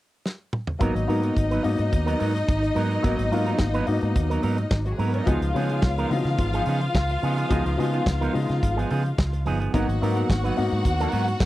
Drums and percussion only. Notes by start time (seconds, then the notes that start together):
0.26 snare
0.53 mid tom
0.67 floor tom
0.80 kick, closed hi-hat
0.96 closed hi-hat
1.10 open hi-hat
1.23 closed hi-hat
1.37 kick, closed hi-hat
1.51 closed hi-hat
1.64 open hi-hat
1.78 closed hi-hat
1.93 kick, closed hi-hat
2.08 closed hi-hat
2.20 open hi-hat
2.36 closed hi-hat
2.48 kick, closed hi-hat
2.64 closed hi-hat
2.76 open hi-hat
2.91 closed hi-hat
3.04 kick, closed hi-hat
3.19 closed hi-hat
3.32 open hi-hat
3.46 closed hi-hat
3.59 kick, snare, closed hi-hat
3.74 closed hi-hat
3.87 open hi-hat
4.01 closed hi-hat
4.16 kick, closed hi-hat
4.31 closed hi-hat
4.43 open hi-hat
4.58 closed hi-hat
4.71 kick, snare, closed hi-hat
4.86 closed hi-hat
4.99 open hi-hat
5.14 closed hi-hat
5.27 kick, closed hi-hat
5.42 closed hi-hat
5.56 open hi-hat
5.69 closed hi-hat
5.82 kick, snare, closed hi-hat
5.98 closed hi-hat
6.11 open hi-hat
6.25 snare, closed hi-hat
6.38 kick, closed hi-hat
6.53 closed hi-hat
6.66 open hi-hat
6.81 closed hi-hat
6.95 kick, snare, closed hi-hat
7.09 closed hi-hat
7.23 open hi-hat
7.37 closed hi-hat
7.51 kick, closed hi-hat
7.66 closed hi-hat
7.80 open hi-hat
7.94 closed hi-hat
8.06 kick, snare, closed hi-hat
8.22 closed hi-hat
8.35 open hi-hat
8.49 snare, closed hi-hat
8.63 kick, closed hi-hat
8.79 closed hi-hat
8.90 open hi-hat
9.06 closed hi-hat
9.18 kick, snare, closed hi-hat
9.33 closed hi-hat
9.46 open hi-hat
9.62 closed hi-hat
9.74 kick, closed hi-hat
9.89 closed hi-hat
10.03 open hi-hat
10.17 closed hi-hat
10.30 kick, snare, closed hi-hat
10.45 closed hi-hat
10.58 open hi-hat
10.71 closed hi-hat
10.85 kick, closed hi-hat
11.00 closed hi-hat
11.12 open hi-hat
11.28 closed hi-hat
11.40 kick, snare, closed hi-hat